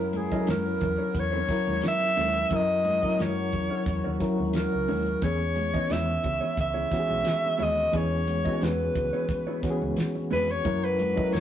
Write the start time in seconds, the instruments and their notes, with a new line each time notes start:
Already playing: fingered electric bass F#2, string section C#3 F#3 B3 E4, reed electric piano F#3 C#4 E4 A#4, alto saxophone A#4
0.10 alto saxophone A#4, muted clean electric guitar stroke, closed hi-hat, high conga, triangle
0.17 alto saxophone G#4
0.31 reed electric piano F#3 C#4 E4 A4, clean electric guitar C#4 E4 A#4 D#5, kick, closed hi-hat, muted triangle
0.40 reed electric piano A#4
0.47 fingered electric bass F#2, clean electric guitar C#4 E4 A#4 C#5, snare, closed hi-hat, muted conga, high conga, muted triangle
0.51 alto saxophone A#4
0.66 muted conga, muted triangle
0.81 fingered electric bass E2, muted clean electric guitar stroke, kick, closed hi-hat, low conga, triangle
0.98 clean electric guitar C#4 E4 A#4 C#5, muted triangle
1.15 fingered electric bass E2, muted clean electric guitar stroke, kick, closed hi-hat, muted triangle
1.20 alto saxophone C#5
1.32 clean electric guitar C#4 E4 A#4 C#5, muted conga, muted triangle
1.48 reed electric piano F#3 C#4 E4 A#4, muted clean electric guitar stroke, kick, snare, closed hi-hat, triangle
1.67 fingered electric bass D#2, muted clean electric guitar stroke, high conga, muted triangle
1.82 muted clean electric guitar stroke, snare, closed hi-hat
1.88 alto saxophone E5
2.01 muted clean electric guitar stroke, muted conga, muted triangle
2.16 fingered electric bass D#2, clean electric guitar C#4 E4 A#4 C#5, open hi-hat, high conga, triangle
2.35 muted clean electric guitar stroke, closed hi-hat, muted triangle
2.50 fingered electric bass F#2, reed electric piano F#3 C#4 E4 A#4, clean electric guitar C#4 E4 A#4 C#5, string section F#4, kick, closed hi-hat, low conga, muted triangle
2.55 alto saxophone D#5
2.69 muted triangle
2.84 muted clean electric guitar stroke, closed hi-hat, high conga, triangle
3.02 reed electric piano F#3 C#4 E4 A#4, clean electric guitar C#4 E4 A#4 D#5, kick, closed hi-hat, muted triangle
3.18 fingered electric bass F#2, clean electric guitar C#4 E4 A#4 C#5, alto saxophone C#5, snare, closed hi-hat, high conga, muted triangle
3.37 muted triangle
3.52 fingered electric bass E2, muted clean electric guitar stroke, kick, closed hi-hat, low conga, triangle
3.70 clean electric guitar C#4 E4 A#4 C#5, muted triangle
3.86 fingered electric bass E2, muted clean electric guitar stroke, kick, closed hi-hat, muted conga, muted triangle
4.04 fingered electric bass D#2, clean electric guitar C#4 E4 A#4 C#5, muted triangle
4.20 reed electric piano F#3 C#4 E4 A#4, muted clean electric guitar stroke, kick, snare, closed hi-hat, triangle
4.38 fingered electric bass D#2, muted clean electric guitar stroke, high conga, muted triangle
4.53 alto saxophone A#4, muted clean electric guitar stroke, snare, closed hi-hat
4.73 fingered electric bass C#2, muted clean electric guitar stroke, muted triangle
4.88 fingered electric bass D#2, clean electric guitar C#4 E4 A#4 C#5, open hi-hat, high conga, triangle
5.06 muted clean electric guitar stroke, closed hi-hat, muted triangle
5.21 fingered electric bass E2, reed electric piano E3 B3 C#4 G#4, string section G#3 B3 C#4, clean electric guitar B3 E4 G#4 C#5, alto saxophone C#5, kick, closed hi-hat, low conga, muted triangle
5.41 muted conga, muted triangle
5.55 muted clean electric guitar stroke, closed hi-hat, high conga, triangle
5.73 reed electric piano D#3 E3 B3 C#4, clean electric guitar B3 E4 G#4 D#5, kick, closed hi-hat, muted triangle
5.89 fingered electric bass E2, clean electric guitar B3 E4 G#4 C#5, alto saxophone E5, snare, closed hi-hat, muted conga, high conga, muted triangle
6.08 muted conga, muted triangle
6.23 fingered electric bass C#2, muted clean electric guitar stroke, kick, closed hi-hat, low conga, triangle
6.41 clean electric guitar B3 E4 G#4 C#5, muted triangle
6.57 fingered electric bass C#2, muted clean electric guitar stroke, kick, closed hi-hat, muted triangle
6.61 alto saxophone E5
6.74 clean electric guitar B3 E4 G#4 C#5, muted triangle
6.90 reed electric piano E3 B3 C#4 F#4, muted clean electric guitar stroke, kick, snare, closed hi-hat, triangle
6.99 reed electric piano G#4
7.08 fingered electric bass B1, muted clean electric guitar stroke, high conga, muted triangle
7.24 muted clean electric guitar stroke, snare, closed hi-hat, muted triangle
7.42 muted clean electric guitar stroke, muted conga, muted triangle
7.58 fingered electric bass D#2, clean electric guitar B3 E4 G#4 C#5, open hi-hat, high conga, triangle
7.63 alto saxophone D#5
7.77 muted clean electric guitar stroke, closed hi-hat, muted triangle
7.92 fingered electric bass E2, reed electric piano E3 B3 C#4 G#4, clean electric guitar B3 E4 G#4 C#5, kick, closed hi-hat, low conga, muted triangle
7.96 alto saxophone C#5
8.12 muted triangle
8.26 muted clean electric guitar stroke, closed hi-hat, high conga, triangle
8.45 reed electric piano E3 B3 C#4 F#4, clean electric guitar B3 E4 G#4 D#5, kick, closed hi-hat, muted triangle
8.53 reed electric piano G#4
8.60 fingered electric bass E2, clean electric guitar B3 E4 G#4 C#5, snare, closed hi-hat, high conga, muted triangle
8.64 alto saxophone B4
8.80 muted conga, muted triangle
8.94 fingered electric bass C#2, muted clean electric guitar stroke, kick, closed hi-hat, low conga, triangle
9.13 clean electric guitar B3 E4 G#4 C#5, muted triangle
9.29 muted clean electric guitar stroke, kick, closed hi-hat, muted conga, muted triangle
9.47 clean electric guitar B3 E4 G#4 C#5, muted triangle
9.62 reed electric piano E3 B3 C#4 F#4, muted clean electric guitar stroke, muted fingered electric bass stroke, kick, snare, closed hi-hat, triangle
9.70 reed electric piano G#4
9.82 fingered electric bass C#2, muted clean electric guitar stroke, high conga, muted triangle
9.97 muted clean electric guitar stroke, snare, closed hi-hat, muted conga, muted triangle
10.15 muted clean electric guitar stroke, muted conga, muted triangle
10.31 fingered electric bass F2, clean electric guitar B3 E4 G#4 C#5, alto saxophone B4, open hi-hat, high conga, triangle
10.49 alto saxophone C#5, muted clean electric guitar stroke, closed hi-hat, muted triangle
10.64 fingered electric bass F#2, string section A#2 C#3 F#3 F#4, reed electric piano F#3 C#4 E4 A#4, clean electric guitar A#3 E4 F#4 C#5, kick, closed hi-hat, low conga, muted triangle
10.84 alto saxophone B4, muted conga, muted triangle
10.98 muted clean electric guitar stroke, closed hi-hat, high conga, triangle
11.15 reed electric piano F#3 C#4 E4 A4, clean electric guitar A#3 E4 F#4 D#5, kick, muted triangle
11.24 reed electric piano A#4
11.32 fingered electric bass F#2, clean electric guitar A#3 E4 F#4 C#5, alto saxophone C#5, snare, closed hi-hat, high conga, muted triangle